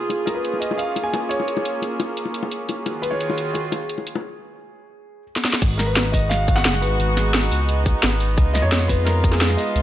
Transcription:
Already playing: string section F4 G#4
0.10 string section A#3 C#4, closed hi-hat, high bongo
0.26 grand piano A#4, closed hi-hat, high bongo
0.35 grand piano B4
0.45 closed hi-hat
0.54 high bongo
0.60 grand piano D#5, closed hi-hat
0.71 high bongo
0.78 grand piano F5, closed hi-hat
0.96 closed hi-hat, high bongo
1.04 grand piano G#5
1.13 closed hi-hat, high bongo
1.29 grand piano C#5, closed hi-hat
1.40 high bongo
1.48 closed hi-hat
1.57 high bongo
1.65 closed hi-hat
1.82 closed hi-hat, high bongo
2.00 closed hi-hat, high bongo
2.17 closed hi-hat
2.25 high bongo
2.34 closed hi-hat
2.43 high bongo
2.52 closed hi-hat
2.69 closed hi-hat, high bongo
2.86 string section D#3 F4 F#4 G#4, closed hi-hat, high bongo
3.02 grand piano B4, closed hi-hat
3.11 grand piano C#5, high bongo
3.21 closed hi-hat
3.30 high bongo
3.38 closed hi-hat
3.53 grand piano G#4, closed hi-hat, high bongo
3.72 closed hi-hat, high bongo
3.90 closed hi-hat
3.98 high bongo
4.07 closed hi-hat
4.15 high bongo
5.36 snare
5.45 snare
5.53 snare
5.62 analog synth bass G#1, string section G#3 B3 D#4 F#4, kick, closed hi-hat, crash
5.78 grand piano A#4, snare, closed hi-hat, cabasa
5.86 grand piano B4
5.96 snare, closed hi-hat
6.12 grand piano D#5, kick, open hi-hat, cabasa
6.29 grand piano F5, snare, closed hi-hat
6.48 kick, closed hi-hat, cabasa
6.56 grand piano F#5, snare
6.65 analog synth bass F#1, snare, closed hi-hat
6.74 snare
6.81 analog synth bass G#1, grand piano B4, open hi-hat, cabasa
7.00 analog synth bass G#1, closed hi-hat
7.17 snare, closed hi-hat, cabasa
7.34 snare, closed hi-hat
7.51 analog synth bass C#2, open hi-hat, cabasa
7.69 closed hi-hat
7.86 kick, closed hi-hat, cabasa
8.03 analog synth bass G#1, snare, closed hi-hat
8.20 open hi-hat, cabasa
8.38 analog synth bass C#2, string section G#3 F4, kick, closed hi-hat
8.54 grand piano D#5, snare, closed hi-hat, cabasa
8.62 analog synth bass F2, grand piano C#5
8.72 snare, closed hi-hat
8.88 grand piano B4, kick, open hi-hat, cabasa
9.05 grand piano A#4, snare, closed hi-hat
9.24 kick, closed hi-hat, cabasa
9.31 grand piano G#4, snare
9.41 snare, closed hi-hat
9.50 snare
9.57 grand piano D#5, open hi-hat, cabasa
9.76 analog synth bass C#2, closed hi-hat

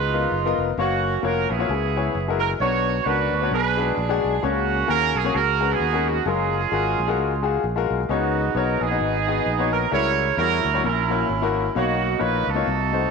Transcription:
Already playing: fingered electric bass C#2, upright piano C#3, horn section D#4 F4 B4
0.13 upright piano B3 F4 A#4 D#5
0.32 fingered electric bass F#1
0.45 upright piano B3 F4 A#4 D#5
0.58 fingered electric bass F1
0.77 fingered electric bass F#1, upright piano A#3 F#4 C#5 F5, horn section A#3 C#4 F#4
1.22 fingered electric bass F1, upright piano A#3 F4 F#4 C#5, horn section A#4
1.49 fingered electric bass A#1, horn section B3 E4 G#4
1.59 upright piano A#3 F4 F#4 C#5
1.69 fingered electric bass C#2, upright piano C#3
1.96 upright piano B3 E4 G#4 C#5
2.15 fingered electric bass F#1
2.28 upright piano G#3 E4 F#4 A#4
2.40 horn section A#4
2.60 fingered electric bass B1, upright piano B2 B3 D4 F#4 C#5, horn section F#4 C#5
3.05 fingered electric bass C#2, upright piano B3 D4 F#4 A#4, horn section D4 F#4 B4
3.32 fingered electric bass D2
3.41 upright piano B3 D4 F#4 C#5
3.51 fingered electric bass B1, upright piano B2, horn section D4 G#4 B4
3.77 upright piano G#3 D4 F#4 B4
3.97 fingered electric bass A#1
4.09 upright piano G#3 D4 F#4 G#4
4.24 fingered electric bass B1
4.43 fingered electric bass C#2, upright piano C#3 A#3 C#4 F#4 C#5, horn section A#3 C#4 F#4
4.88 fingered electric bass D#2, upright piano A#3 C#4 F#4 G#4, horn section A#4
5.15 fingered electric bass B1, horn section G#4
5.24 upright piano A#3 C#4 F#4 C#5
5.34 fingered electric bass C#2, upright piano C#3, horn section F#4 A#4
5.61 upright piano G#3 C#4 F#4 B4
5.71 horn section B3 G#4
5.80 fingered electric bass D#2
5.93 upright piano G#3 C#4 F#4 A#4
6.08 horn section F#4
6.26 fingered electric bass F#1, upright piano F#3 G#3 F4 A#4, horn section C#4 F4 G#4
6.71 fingered electric bass G#1, upright piano G#3 F4 F#4 A#4
6.98 fingered electric bass A#1
7.08 upright piano G#3 F4 F#4 A#4
7.18 fingered electric bass C#2
7.42 upright piano G#3 F4 F#4 G#4
7.64 fingered electric bass A#1
7.76 upright piano G#3 F4 F#4 A#4
7.90 fingered electric bass B1
8.09 fingered electric bass C#2, upright piano C#3 B3 D#4 F#4 C#5, horn section B3 D#4 F#4
8.55 fingered electric bass B1, upright piano B3 D#4 F#4 C#5, horn section A#4
8.81 fingered electric bass A#1, horn section B3 D#4 G#4
8.90 upright piano B3 D#4 F#4 D#5
9.00 fingered electric bass G#1
9.27 upright piano B3 D#4 F#4 G#4
9.46 fingered electric bass A#1
9.59 upright piano B3 D#4 F#4 C#5
9.72 horn section A#4
9.91 fingered electric bass C#2, upright piano C#3 G3 E4 F#4 A#4, horn section E4 A#4 C#5
10.37 fingered electric bass E2, upright piano G3 E4 F#4 C#5, horn section E4 F#4 A#4
10.65 fingered electric bass D2
10.74 upright piano G3 E4 F#4 C#5
10.84 fingered electric bass A#1, upright piano A#2, horn section C#4 E4 A#4
11.10 upright piano A#3 E4 F#4 C#5
11.29 fingered electric bass G#1
11.42 upright piano A#3 E4 F#4 A#4
11.75 fingered electric bass B1, upright piano B2 A#3 D#4 C#5 F5, horn section A#3 D#4 F#4
12.19 fingered electric bass A#1, upright piano A#3 D#4 F4 C#5, horn section B4
12.47 fingered electric bass C#2, horn section D#4 F#4 A4
12.55 upright piano A#3 D#4 F4 C#5
12.65 fingered electric bass C2, upright piano C3
12.92 upright piano A3 D#4 F#4 C5

